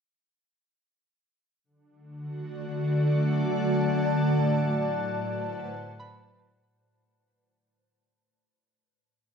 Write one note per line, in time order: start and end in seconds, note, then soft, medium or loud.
1.63 4.17 D3 medium
1.63 6.71 F#3 medium
1.63 6.72 F#5 medium
1.93 6.69 A3 medium
1.98 4.15 F#4 medium
2.22 5.16 D5 medium
2.75 5.17 A5 medium
4.15 6.69 A2 medium
4.91 6.69 C5 medium
4.96 6.69 B4 medium
5.18 6.68 A5 medium
5.99 7.44 B5 soft